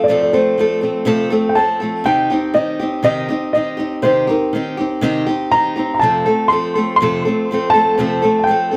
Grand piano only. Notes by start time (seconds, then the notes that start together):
0.04 D5
0.23 D5
0.33 C5
1.49 G5
1.55 A5
2.06 G5
2.54 D#5
3.04 D#5
3.53 D#5
4.03 C5
4.29 A#4
5.52 A#5
5.94 A#5
5.99 A5
6.48 C6
6.96 C6
7.70 A5
8.39 A5
8.44 G5